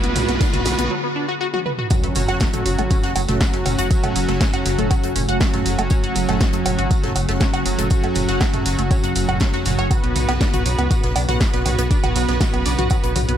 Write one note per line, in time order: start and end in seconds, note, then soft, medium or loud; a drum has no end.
0.00 0.14 B1 medium
0.00 0.87 D3 medium
0.00 0.87 F#3 medium
0.00 0.87 B3 medium
0.00 0.91 B3 loud
0.00 0.13 B3 medium
0.00 0.91 F#4 medium
0.00 0.88 G#4 medium
0.00 0.91 B4 loud
0.00 closed hi-hat soft
0.00 mid tom medium
0.00 riser medium
0.10 mid tom medium
0.16 0.26 B1 loud
0.16 0.20 F#3 medium
0.16 mid tom loud
0.16 open hi-hat loud
0.16 mid tom loud
0.16 tambourine medium
0.22 mid tom medium
0.28 0.39 B1 medium
0.28 0.32 B3 medium
0.28 snare soft
0.28 closed hi-hat soft
0.28 mid tom medium
0.35 mid tom medium
0.41 0.47 D4 medium
0.41 kick loud
0.41 snare loud
0.41 closed hi-hat medium
0.41 mid tom loud
0.41 tambourine medium
0.47 mid tom medium
0.53 0.64 B1 medium
0.53 0.63 F#4 loud
0.53 closed hi-hat soft
0.53 mid tom loud
0.53 mid tom medium
0.60 mid tom medium
0.65 0.76 B1 loud
0.65 0.72 F#3 medium
0.65 snare loud
0.65 open hi-hat loud
0.65 mid tom loud
0.65 tambourine medium
0.72 mid tom medium
0.78 0.89 B1 medium
0.78 0.88 B3 medium
0.78 closed hi-hat soft
0.78 mid tom medium
0.85 mid tom medium
0.91 0.95 F#3 medium
1.04 1.07 B3 medium
1.16 1.26 D4 medium
1.29 1.35 F#4 loud
1.41 1.47 F#4 loud
1.54 1.60 F#4 loud
1.54 high tom medium
1.66 1.72 B4 medium
1.66 mid tom medium
1.79 1.88 F#4 medium
1.79 mid tom medium
1.90 13.37 F#2 medium
1.90 9.87 C#3 medium
1.90 13.37 C#3 medium
1.90 13.37 F#3 medium
1.90 3.13 F#3 loud
1.90 1.95 F#3 medium
1.90 9.87 A3 medium
1.90 3.13 C#4 medium
1.90 13.37 F#4 medium
1.90 3.13 F#4 loud
1.90 1.95 F#4 medium
1.90 kick loud
1.90 closed hi-hat medium
1.90 tambourine medium
1.90 impact medium
1.90 low woodblock medium
2.04 2.14 F#1 medium
2.04 2.07 A3 medium
2.04 2.07 A4 medium
2.04 closed hi-hat soft
2.15 2.26 F#1 loud
2.15 2.22 C#4 medium
2.15 2.22 C#5 medium
2.15 mid tom medium
2.15 open hi-hat loud
2.15 tambourine medium
2.29 2.39 F#1 medium
2.29 2.38 F#4 loud
2.29 2.38 F#5 medium
2.29 snare medium
2.29 closed hi-hat soft
2.29 low woodblock medium
2.40 2.47 F#3 medium
2.40 2.47 F#4 medium
2.40 kick loud
2.40 snare loud
2.40 closed hi-hat medium
2.40 tambourine medium
2.54 2.64 F#1 medium
2.54 2.63 A3 medium
2.54 2.63 A4 medium
2.54 closed hi-hat soft
2.54 closed hi-hat medium
2.54 mid tom loud
2.66 2.76 F#1 loud
2.66 2.70 F#3 medium
2.66 2.70 F#4 medium
2.66 open hi-hat loud
2.66 tambourine medium
2.79 2.89 G#1 medium
2.79 2.82 A3 medium
2.79 2.82 A4 soft
2.79 closed hi-hat soft
2.79 low woodblock medium
2.90 2.97 C#4 medium
2.90 2.97 C#5 medium
2.90 kick loud
2.90 closed hi-hat medium
2.90 mid tom medium
2.90 tambourine medium
3.03 3.14 F#1 medium
3.03 3.13 F#4 loud
3.03 3.13 F#5 medium
3.03 snare soft
3.03 closed hi-hat soft
3.15 3.26 F#1 loud
3.15 3.22 F#3 medium
3.15 3.22 F#4 medium
3.15 open hi-hat loud
3.15 tambourine medium
3.15 low woodblock medium
3.28 3.39 F#1 medium
3.28 3.88 F#3 medium
3.28 3.38 A3 medium
3.28 3.88 C#4 medium
3.28 3.88 F#4 loud
3.28 3.38 A4 medium
3.28 snare soft
3.28 closed hi-hat soft
3.28 mid tom medium
3.41 3.45 F#3 medium
3.41 3.45 F#4 medium
3.41 kick loud
3.41 snare loud
3.41 closed hi-hat medium
3.41 tambourine medium
3.53 3.64 F#1 medium
3.53 3.57 A3 medium
3.53 3.57 A4 medium
3.53 snare soft
3.53 closed hi-hat soft
3.66 3.76 F#1 loud
3.66 3.72 C#4 medium
3.66 3.72 C#5 soft
3.66 mid tom loud
3.66 open hi-hat loud
3.66 tambourine medium
3.66 low woodblock medium
3.78 3.89 F#1 medium
3.78 3.88 F#4 loud
3.78 3.88 F#5 medium
3.78 closed hi-hat soft
3.90 5.13 F#3 loud
3.90 3.97 F#3 medium
3.90 5.13 C#4 medium
3.90 5.13 F#4 loud
3.90 3.97 F#4 medium
3.90 kick loud
3.90 closed hi-hat medium
3.90 tambourine medium
4.04 4.14 F#1 medium
4.04 4.13 A3 medium
4.04 4.13 A4 medium
4.04 closed hi-hat soft
4.04 mid tom medium
4.04 low woodblock medium
4.16 4.26 F#1 loud
4.16 4.20 F#3 medium
4.16 4.20 F#4 medium
4.16 open hi-hat loud
4.16 tambourine medium
4.28 4.39 F#1 medium
4.28 4.32 A3 medium
4.28 4.32 A4 medium
4.28 snare medium
4.28 closed hi-hat soft
4.41 4.47 C#4 medium
4.41 4.47 C#5 medium
4.41 kick loud
4.41 snare loud
4.41 closed hi-hat medium
4.41 mid tom medium
4.41 tambourine medium
4.54 4.64 F#1 medium
4.54 4.63 F#4 loud
4.54 4.63 F#5 medium
4.54 closed hi-hat soft
4.54 low woodblock medium
4.66 4.76 F#1 loud
4.66 4.72 F#3 medium
4.66 4.72 F#4 medium
4.66 snare soft
4.66 open hi-hat loud
4.66 tambourine medium
4.79 4.89 F#1 medium
4.79 4.88 A3 medium
4.79 4.88 A4 soft
4.79 closed hi-hat soft
4.79 mid tom medium
4.91 4.95 F#3 medium
4.91 4.95 F#4 medium
4.91 kick loud
4.91 closed hi-hat medium
4.91 tambourine medium
4.91 low woodblock medium
5.03 5.14 F#1 medium
5.03 5.07 A3 medium
5.03 5.07 A4 soft
5.03 closed hi-hat soft
5.16 5.26 F#1 loud
5.16 5.22 C#4 medium
5.16 5.22 C#5 medium
5.16 mid tom medium
5.16 open hi-hat loud
5.16 tambourine medium
5.29 5.39 F#1 medium
5.29 5.88 F#3 loud
5.29 5.88 C#4 medium
5.29 5.88 F#4 loud
5.29 5.38 F#4 loud
5.29 5.38 F#5 medium
5.29 closed hi-hat soft
5.40 5.47 F#3 medium
5.40 5.47 F#4 medium
5.40 kick loud
5.40 snare loud
5.40 closed hi-hat medium
5.40 tambourine medium
5.40 low woodblock medium
5.54 5.64 F#1 medium
5.54 5.63 A3 medium
5.54 5.63 A4 medium
5.54 snare medium
5.54 closed hi-hat soft
5.54 mid tom medium
5.65 5.76 F#1 loud
5.65 5.70 F#3 medium
5.65 5.70 F#4 medium
5.65 snare soft
5.65 open hi-hat loud
5.65 tambourine medium
5.79 5.89 F#1 medium
5.79 5.82 A3 medium
5.79 5.82 A4 medium
5.79 closed hi-hat soft
5.79 low woodblock medium
5.90 7.13 F#3 loud
5.90 7.13 C#4 medium
5.90 5.97 C#4 medium
5.90 7.13 F#4 loud
5.90 5.97 C#5 medium
5.90 kick loud
5.90 closed hi-hat medium
5.90 mid tom medium
5.90 tambourine loud
6.04 6.14 F#1 medium
6.04 6.13 F#4 loud
6.04 6.13 F#5 medium
6.04 closed hi-hat soft
6.15 6.26 F#1 loud
6.15 6.22 F#3 medium
6.15 6.22 F#4 medium
6.15 open hi-hat loud
6.15 tambourine medium
6.28 6.39 F#1 medium
6.28 6.38 A3 medium
6.28 6.38 A4 medium
6.28 snare soft
6.28 closed hi-hat soft
6.28 mid tom medium
6.28 low woodblock medium
6.40 6.45 F#3 medium
6.40 6.45 F#4 medium
6.40 kick loud
6.40 snare loud
6.40 closed hi-hat medium
6.40 tambourine medium
6.53 6.64 F#1 medium
6.53 6.57 A3 medium
6.53 6.57 A4 medium
6.53 closed hi-hat soft
6.66 6.76 F#1 loud
6.66 6.72 C#4 medium
6.66 6.72 C#5 medium
6.66 mid tom medium
6.66 open hi-hat loud
6.66 tambourine medium
6.66 low woodblock medium
6.79 6.89 G#1 loud
6.79 6.88 F#4 medium
6.79 6.88 F#5 medium
6.79 closed hi-hat soft
6.91 6.97 F#3 medium
6.91 6.97 F#4 medium
6.91 kick loud
6.91 closed hi-hat medium
6.91 tambourine medium
7.04 7.14 F#1 medium
7.04 7.13 A3 medium
7.04 7.13 A4 medium
7.04 snare soft
7.04 closed hi-hat soft
7.04 mid tom medium
7.16 7.26 F#1 loud
7.16 7.20 F#3 medium
7.16 7.20 F#4 medium
7.16 open hi-hat loud
7.16 tambourine medium
7.16 low woodblock soft
7.29 7.39 F#1 loud
7.29 7.88 F#3 loud
7.29 7.32 A3 medium
7.29 7.88 C#4 medium
7.29 7.88 F#4 loud
7.29 7.32 A4 medium
7.29 snare medium
7.29 closed hi-hat soft
7.40 7.47 C#4 medium
7.40 7.47 C#5 medium
7.40 kick loud
7.40 snare loud
7.40 closed hi-hat medium
7.40 mid tom medium
7.40 tambourine medium
7.54 7.64 F#1 medium
7.54 7.63 F#4 loud
7.54 7.63 F#5 medium
7.54 snare soft
7.54 closed hi-hat soft
7.54 low woodblock medium
7.66 7.76 F#1 loud
7.66 7.72 F#3 medium
7.66 7.72 F#4 soft
7.66 open hi-hat loud
7.66 tambourine medium
7.79 7.89 F#1 medium
7.79 7.88 A3 medium
7.79 7.88 A4 medium
7.79 closed hi-hat soft
7.79 mid tom medium
7.90 7.95 F#3 medium
7.90 9.13 F#3 loud
7.90 9.13 C#4 medium
7.90 7.95 F#4 medium
7.90 9.13 F#4 loud
7.90 kick loud
7.90 closed hi-hat medium
7.90 tambourine medium
8.04 8.14 F#1 medium
8.04 8.07 A3 medium
8.04 8.07 A4 medium
8.04 closed hi-hat soft
8.04 low woodblock medium
8.15 8.26 F#1 loud
8.15 8.22 C#4 medium
8.15 8.22 C#5 medium
8.15 mid tom medium
8.15 open hi-hat loud
8.15 tambourine medium
8.28 8.39 F#1 medium
8.28 8.38 F#4 loud
8.28 8.38 F#5 medium
8.28 snare soft
8.28 closed hi-hat soft
8.41 8.47 F#3 medium
8.41 8.47 F#4 medium
8.41 kick loud
8.41 snare loud
8.41 closed hi-hat medium
8.41 tambourine medium
8.41 low woodblock medium
8.54 8.64 F#1 medium
8.54 8.63 A3 medium
8.54 8.63 A4 medium
8.54 closed hi-hat soft
8.54 mid tom medium
8.66 8.76 F#1 loud
8.66 8.70 F#3 medium
8.66 8.70 F#4 medium
8.66 snare soft
8.66 open hi-hat loud
8.66 tambourine medium
8.79 8.89 F#1 medium
8.79 8.82 A3 medium
8.79 8.82 A4 soft
8.79 closed hi-hat soft
8.91 8.97 C#4 medium
8.91 8.97 C#5 medium
8.91 kick loud
8.91 closed hi-hat medium
8.91 mid tom medium
8.91 tambourine loud
8.91 low woodblock medium
9.04 9.14 F#1 medium
9.04 9.13 F#4 medium
9.04 9.13 F#5 medium
9.04 snare soft
9.04 closed hi-hat soft
9.15 9.26 F#1 loud
9.15 9.88 F#3 medium
9.15 9.88 C#4 medium
9.15 9.88 F#4 loud
9.15 9.20 F#5 medium
9.15 9.20 F#6 medium
9.15 open hi-hat loud
9.15 tambourine medium
9.29 9.39 F#1 medium
9.29 9.38 F#4 medium
9.29 9.38 F#5 medium
9.29 closed hi-hat soft
9.29 mid tom medium
9.29 low woodblock medium
9.40 9.47 C#4 medium
9.40 9.47 C#5 medium
9.40 kick loud
9.40 snare loud
9.40 closed hi-hat medium
9.40 tambourine medium
9.53 9.64 F#1 medium
9.53 9.60 F#4 loud
9.53 9.60 F#5 medium
9.53 snare medium
9.53 closed hi-hat soft
9.65 9.76 F#1 loud
9.65 9.72 F#3 medium
9.65 9.72 F#4 medium
9.65 snare medium
9.65 mid tom medium
9.65 open hi-hat loud
9.65 tambourine medium
9.79 9.89 F#1 medium
9.79 9.88 C#5 loud
9.79 9.88 C#6 medium
9.79 closed hi-hat soft
9.79 low woodblock medium
9.91 9.97 F#3 medium
9.91 12.88 B3 medium
9.91 11.13 B3 loud
9.91 9.97 F#4 medium
9.91 11.13 F#4 medium
9.91 11.13 B4 loud
9.91 kick loud
9.91 closed hi-hat medium
9.91 tambourine loud
9.91 low woodblock medium
10.04 10.14 B1 medium
10.04 10.13 B3 medium
10.04 10.13 B4 medium
10.04 closed hi-hat soft
10.16 10.26 B1 loud
10.16 10.20 F#3 medium
10.16 10.20 F#4 medium
10.16 mid tom medium
10.16 open hi-hat loud
10.16 tambourine medium
10.29 10.39 B1 medium
10.29 10.32 B3 medium
10.29 10.32 B4 medium
10.29 snare soft
10.29 closed hi-hat soft
10.29 low woodblock medium
10.41 10.47 D4 medium
10.41 10.47 D5 medium
10.41 kick loud
10.41 snare loud
10.41 closed hi-hat medium
10.41 tambourine medium
10.54 10.64 B1 medium
10.54 10.63 F#4 loud
10.54 10.63 F#5 medium
10.54 closed hi-hat soft
10.54 mid tom loud
10.66 10.76 B1 loud
10.66 10.72 F#3 medium
10.66 10.72 F#4 medium
10.66 open hi-hat loud
10.66 tambourine medium
10.79 10.89 C#2 medium
10.79 10.88 B3 medium
10.79 10.88 B4 soft
10.79 closed hi-hat soft
10.79 low woodblock medium
10.91 10.95 F#3 medium
10.91 10.95 F#4 medium
10.91 kick loud
10.91 closed hi-hat medium
10.91 mid tom medium
10.91 tambourine loud
11.04 11.14 B1 medium
11.04 11.07 B3 medium
11.04 11.07 B4 medium
11.04 snare soft
11.04 closed hi-hat soft
11.16 11.26 B1 loud
11.16 11.22 D4 medium
11.16 11.22 D5 medium
11.16 open hi-hat loud
11.16 tambourine medium
11.16 low woodblock medium
11.29 11.39 B1 medium
11.29 11.88 B3 medium
11.29 11.38 F#4 loud
11.29 11.88 F#4 medium
11.29 11.88 B4 loud
11.29 11.38 F#5 medium
11.29 snare soft
11.29 closed hi-hat soft
11.29 mid tom medium
11.40 11.47 F#3 medium
11.40 11.47 F#4 medium
11.40 kick loud
11.40 snare loud
11.40 closed hi-hat medium
11.40 tambourine medium
11.54 11.64 B1 medium
11.54 11.63 B3 medium
11.54 11.63 B4 medium
11.54 snare soft
11.54 closed hi-hat soft
11.66 11.76 B1 loud
11.66 11.70 F#3 medium
11.66 11.70 F#4 soft
11.66 mid tom loud
11.66 open hi-hat loud
11.66 tambourine medium
11.66 low woodblock medium
11.79 11.89 B1 medium
11.79 11.82 B3 medium
11.79 11.82 B4 medium
11.79 closed hi-hat soft
11.91 13.13 B3 loud
11.91 11.97 D4 medium
11.91 13.13 F#4 medium
11.91 13.13 B4 loud
11.91 11.97 D5 medium
11.91 kick loud
11.91 closed hi-hat medium
11.91 tambourine medium
12.03 12.14 B1 medium
12.03 12.13 F#4 loud
12.03 12.13 F#5 medium
12.03 closed hi-hat soft
12.03 mid tom medium
12.03 low woodblock medium
12.16 12.26 B1 loud
12.16 12.22 F#3 medium
12.16 12.22 F#4 medium
12.16 open hi-hat loud
12.16 tambourine medium
12.28 12.39 B1 medium
12.28 12.38 B3 medium
12.28 12.38 B4 medium
12.28 snare soft
12.28 closed hi-hat soft
12.40 12.45 F#3 medium
12.40 12.45 F#4 medium
12.40 kick loud
12.40 snare loud
12.40 closed hi-hat medium
12.40 mid tom medium
12.40 tambourine medium
12.54 12.64 B1 medium
12.54 12.57 B3 medium
12.54 12.57 B4 medium
12.54 closed hi-hat soft
12.54 low woodblock medium
12.66 12.76 B1 loud
12.66 12.72 D4 medium
12.66 12.72 D5 medium
12.66 snare soft
12.66 open hi-hat loud
12.66 tambourine medium
12.79 12.89 B1 medium
12.79 12.88 F#4 loud
12.79 12.88 F#5 medium
12.79 closed hi-hat soft
12.79 mid tom loud
12.90 12.97 F#3 medium
12.90 12.97 F#4 medium
12.90 kick loud
12.90 closed hi-hat medium
12.90 tambourine loud
12.90 low woodblock medium
13.04 13.14 B1 medium
13.04 13.13 B3 medium
13.04 13.13 B4 medium
13.04 closed hi-hat soft
13.04 closed hi-hat medium
13.16 13.26 B1 loud
13.16 13.20 F#3 medium
13.16 13.20 F#4 medium
13.16 mid tom loud
13.16 open hi-hat loud
13.16 tambourine medium
13.28 13.37 B1 medium
13.28 13.32 B3 medium
13.28 13.37 B3 medium
13.28 13.37 F#4 medium
13.28 13.32 B4 medium
13.28 13.37 B4 loud
13.28 closed hi-hat soft